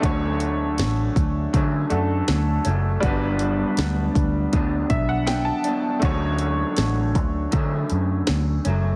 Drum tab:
HH |xxxxxxxx|xxxxxxxx|xxxxxxxx|
SD |--o---o-|--o---o-|--o---o-|
BD |o--oo---|o--ooo--|o--oo---|